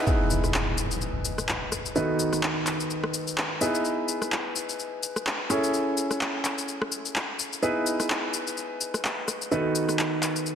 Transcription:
Already playing: F#5
0.07 B3 D#4 E4 G#4 B4, impact, shaker
0.30 shaker
0.44 cross-stick, shaker
0.54 clap, shaker
0.78 shaker
0.91 shaker
1.01 shaker
1.25 shaker
1.38 cross-stick, shaker
1.49 clap, shaker
1.72 cross-stick, shaker
1.86 shaker
1.96 D#3 B3 D#4 F#4 A4 B4, shaker
2.19 shaker
2.33 cross-stick, shaker
2.43 clap, shaker
2.67 clap, shaker
2.80 shaker
2.90 shaker
3.04 cross-stick
3.14 shaker
3.27 shaker
3.38 clap, shaker
3.61 B3 D#4 E4 G#4 B4, shaker
3.75 shaker
3.85 shaker
4.08 shaker
4.22 cross-stick, shaker
4.32 clap, shaker
4.56 shaker
4.69 shaker
4.79 shaker
5.03 shaker
5.16 cross-stick, shaker
5.27 clap, shaker
5.50 C#4 E4 G#4 A4 C#5, cross-stick, shaker
5.64 shaker
5.74 shaker
5.97 shaker
6.11 cross-stick, shaker
6.21 clap, shaker
6.45 clap, shaker
6.58 shaker
6.68 shaker
6.82 cross-stick
6.92 shaker
7.05 shaker
7.16 clap, shaker
7.39 shaker
7.53 shaker
7.62 B3 D#4 E4 G#4 B4, shaker
7.86 shaker
8.00 cross-stick, shaker
8.10 clap, shaker
8.34 shaker
8.47 shaker
8.57 shaker
8.81 shaker
8.94 cross-stick, shaker
9.05 clap, shaker
9.28 cross-stick, shaker
9.42 shaker
9.51 D#3 B3 D#4 F#4 A4 B4, shaker
9.75 shaker
9.89 cross-stick, shaker
9.99 clap, shaker
10.23 clap, shaker
10.36 shaker
10.46 shaker

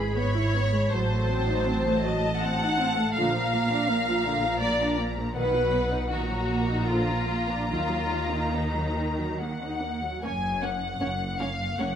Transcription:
Already playing: G#1 G#2 G#3 G#4 B5
0.17 B3 C#5
0.36 E4
0.56 B3
0.74 G#3
0.94 A1 A2 F#3 C5 A5
1.13 A3
1.30 C4
1.51 D#4
1.68 C4
1.88 A3
2.03 F#3 D#5
2.25 A3
2.42 C4 F#5
2.62 D#4
2.80 C4
2.98 A3
3.14 A#1 A#2 D3 F3 F5 A#5
3.35 F3
3.54 A#3
3.72 D4
3.90 A#3
4.08 F3
4.26 D3
4.44 F3
4.60 A#3 D5
4.81 D4
5.00 A#3
5.18 F3
5.36 B1 D#3 B4 F#5
5.40 B2
5.55 F#3
5.74 B3
5.92 D#4
6.11 A#1 A#2 D#3 F#4 A#5
6.29 F#3
6.49 A#3
6.69 D#4
6.89 D3 F3 F4
7.10 F3
7.29 A#3
7.50 D4
7.69 D#3 F#3 F4
7.74 D#2 D#3
7.91 F#3
8.12 A#3
8.32 D#4
8.52 A#3 D#4
8.75 F#3
8.96 D#3
9.20 F#3
9.41 A#3 F#5
9.63 D#4
9.82 A#3
10.03 F#3
10.23 F#1 F#2 A#3 C#4 C#5 G#5
10.61 A#3 C#4 C#5 F#5
11.00 F#1 F#2 A#3 C#4 C#5
11.39 A#3 C#4 C#5 F5
11.78 F#1 F#2 A#3 C#4 C#5 F#5

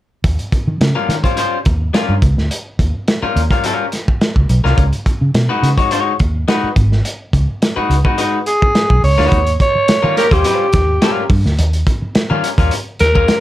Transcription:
0.24 D#2, kick, closed hi-hat
0.39 closed hi-hat
0.52 muted fingered electric bass stroke, kick, closed hi-hat
0.67 D#3
0.81 C#3, snare, closed hi-hat
0.95 G3 C#4 F4 A#4
1.09 D#3, snare, closed hi-hat
1.24 G3 C#4 F4 C5, kick, closed hi-hat
1.37 G3 C#4 F4 C5, closed hi-hat
1.65 D#2, kick, closed hi-hat
1.94 G3 C#4 F4 A#4, snare, closed hi-hat
2.09 G2
2.22 C#2, kick, closed hi-hat
2.37 D2, snare
2.51 closed hi-hat
2.79 D#2, kick, closed hi-hat
3.08 snare, closed hi-hat
3.23 G3 C#4 F4 A#4, muted fingered electric bass stroke
3.36 D#2, closed hi-hat
3.51 G3 C#4 F4 A#4, kick, closed hi-hat
3.64 G3 C#4 F4 A#4, closed hi-hat
3.92 snare, closed hi-hat
4.08 kick
4.21 snare, closed hi-hat
4.36 C#2, kick
4.49 B1, closed hi-hat
4.64 C2 G3 C#4 F4 A#4, snare
4.78 C#2, kick, closed hi-hat
4.93 closed hi-hat
5.06 muted fingered electric bass stroke, kick, closed hi-hat
5.21 C#3
5.34 B2, snare, closed hi-hat
5.49 G#3 D#4 F#4 B4
5.63 C#3, snare, closed hi-hat
5.78 G#3 D#4 F#4 C#5, kick, closed hi-hat
5.91 G#3 D#4 F#4 C#5, closed hi-hat
6.19 D#2, kick, closed hi-hat
6.48 G#3 D#4 F#4 B4, snare, closed hi-hat
6.64 muted fingered electric bass stroke
6.76 G#1, kick, closed hi-hat
6.92 snare
7.05 closed hi-hat
7.33 C#2, kick, closed hi-hat
7.62 snare, closed hi-hat
7.76 G#3 D#4 F#4 B4, muted fingered electric bass stroke
7.90 C#2, closed hi-hat
8.05 G#3 D#4 F#4 B4, kick
8.18 G#3 D#4 F#4 B4, closed hi-hat
8.46 G#4, closed hi-hat
8.62 kick
8.75 snare, closed hi-hat
8.90 B1, kick
9.04 C#2 C#5, open hi-hat
9.18 D2 G#3 D#4 F#4 B4, snare
9.32 D#2, kick, closed hi-hat
9.47 closed hi-hat
9.60 C#5, kick, closed hi-hat
9.75 muted fingered electric bass stroke
9.88 muted fingered electric bass stroke, snare, closed hi-hat
10.03 D#3 G3 C#4 F4 A#4
10.17 A#3 G4 A#4 C#5, snare, closed hi-hat
10.31 D#2 G3 C#4 F4 G4 C5, kick, closed hi-hat
10.44 G3 C#4 F4 C5, closed hi-hat
10.73 D#2, kick, snare, closed hi-hat
11.02 G3 C#4 F4 A#4, snare, closed hi-hat
11.30 G2, kick, open hi-hat
11.45 D2, snare
11.59 D#2, closed hi-hat
11.73 closed hi-hat
11.87 kick, closed hi-hat
12.02 muted fingered electric bass stroke
12.15 muted fingered electric bass stroke, snare, closed hi-hat
12.30 D#3 G3 C#4 F4 A#4
12.44 closed hi-hat
12.58 D#2 G3 C#4 F4 A#4, kick, closed hi-hat
12.71 closed hi-hat
12.99 D#2 A#4, snare, closed hi-hat
13.15 G3 C#4 F4 A#4, kick
13.28 muted fingered electric bass stroke, snare, closed hi-hat

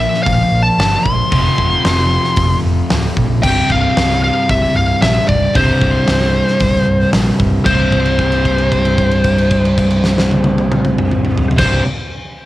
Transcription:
Already playing: A#2 F3 A#3 E5
0.14 snare
0.23 F5, kick, open hi-hat
0.27 A#1
0.52 A#1
0.63 A5
0.78 G1, snare, open hi-hat
1.03 A#1 C6, kick
1.30 F1 F2 C3 F3, kick, open hi-hat
1.58 F1, kick
1.85 F1, snare, open hi-hat
1.98 snare
2.24 snare
2.36 F1, kick, open hi-hat
2.65 F1
2.90 D1, snare, open hi-hat
3.17 A#1, kick
3.42 C1 C2 G2 C3 G5, kick, crash
3.70 C1 F5, kick
3.97 C1, snare, open hi-hat
4.10 snare
4.24 F5
4.49 C1 E5, kick, open hi-hat
4.76 C1 F5
5.01 A#1 E5, snare, open hi-hat
5.28 C1 D5, kick
5.54 C1 C2 G2 C3 C5, kick, open hi-hat
5.81 C1, kick
6.08 C1, snare, open hi-hat
6.20 snare
6.48 snare
6.60 C1, kick, open hi-hat
6.88 C1
7.13 A#1, snare, open hi-hat
7.40 C1, kick
7.66 C1 C2 G2 C5, kick, crash
7.70 C3
7.92 kick, crash
8.06 crash
8.19 kick, crash
8.32 crash
8.45 kick, crash
8.58 crash
8.72 kick, crash
8.85 crash
8.98 kick, crash
9.11 crash
9.24 kick, crash
9.38 crash
9.51 kick, crash
9.65 crash
9.78 kick, crash
9.90 crash
10.04 snare
10.18 snare
10.31 high tom
10.44 high tom
10.58 high tom
10.72 mid tom
10.85 mid tom
10.98 mid tom
11.11 mid tom
11.25 mid tom
11.37 floor tom
11.51 floor tom
11.56 C1 C2 G2 C3 C5, kick, snare, crash

